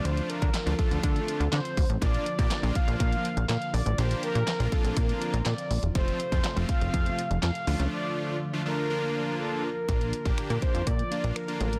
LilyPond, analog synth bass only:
\new Staff \with { instrumentName = "Analog synth bass" } { \clef bass \time 4/4 \key bes \major \tempo 4 = 122 d,8 r16 d16 r16 d,16 r16 d,16 d8 r16 d,16 d16 r16 d,16 a,,16 | bes,,8 r16 bes,16 r16 bes,,16 r16 bes,,16 bes,8 r16 bes,,16 bes,16 r16 bes,,16 a,,16 | bes,,8 r16 bes,16 r16 bes,,16 r16 bes,,16 bes,8 r16 bes,,16 bes,16 r16 bes,,16 e,,16 | f,,8 r16 f,16 r16 f,,16 r16 f,,16 f,8 r16 f,,16 f,16 r16 d,16 des,16 |
r1 | bes,,8. bes,,16 bes,16 bes,16 r16 f,16 bes,8 r16 bes,,16 r8 a,,8 | }